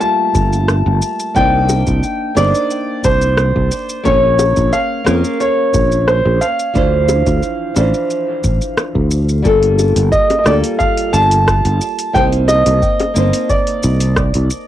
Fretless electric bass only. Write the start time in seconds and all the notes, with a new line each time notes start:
0.35 G1
0.86 G1
1.36 C2
1.87 C2
2.37 G1
3.04 C2
3.56 C2
4.06 A#1
4.57 A#1
5.07 F2
5.74 A#1
6.25 A#1
6.75 D2
7.27 D2
7.76 A1
8.44 A1
8.95 D2
9.45 G1
9.96 G1
10.46 D2
11.14 G1
11.65 G1
12.15 C2
12.66 C2
13.16 G1
13.84 C2
14.35 C2